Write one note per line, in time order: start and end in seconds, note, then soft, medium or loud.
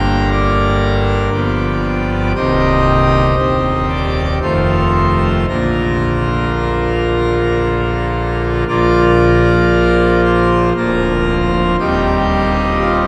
0.00 1.29 G1 medium
0.00 1.29 G2 medium
0.00 1.29 D3 medium
0.00 1.29 A#3 medium
0.00 1.29 A#4 medium
0.00 0.29 G5 loud
0.32 2.31 D5 loud
1.33 2.33 G1 medium
1.33 2.33 G2 medium
1.33 2.33 F3 medium
1.33 2.33 B3 medium
1.33 2.32 G4 medium
2.35 3.35 C1 medium
2.35 3.35 C2 medium
2.35 3.35 D#3 medium
2.35 3.35 C4 medium
2.35 3.35 G4 medium
2.35 3.86 D#5 loud
3.37 4.39 D#1 medium
3.37 4.39 D#2 medium
3.37 4.38 D#3 medium
3.37 4.39 C4 medium
3.37 4.39 G4 medium
3.90 4.34 D5 medium
4.42 5.46 F1 medium
4.42 5.46 F2 medium
4.42 5.46 D#3 medium
4.42 5.46 A3 medium
4.42 5.46 F4 medium
4.42 5.46 C5 medium
5.49 8.64 A#1 medium
5.49 8.64 A#2 medium
5.49 8.64 D3 soft
5.49 8.64 A#3 soft
5.49 8.64 F4 medium
5.49 7.58 A#4 medium
8.68 10.72 A#1 medium
8.68 10.73 A#2 medium
8.68 10.73 F3 medium
8.68 10.73 A#3 medium
8.68 10.73 F4 medium
8.68 10.21 D5 loud
10.25 10.69 C5 loud
10.77 11.76 D1 medium
10.77 11.76 D2 medium
10.77 11.76 F3 medium
10.77 11.76 A#3 medium
10.77 11.76 F4 medium
10.77 11.76 A#4 loud
11.80 13.07 D#1 medium
11.80 13.07 D#2 medium
11.80 13.07 G3 medium
11.80 13.07 C4 medium
11.80 13.07 D#4 medium
11.80 12.78 G4 loud
12.81 13.03 F4 loud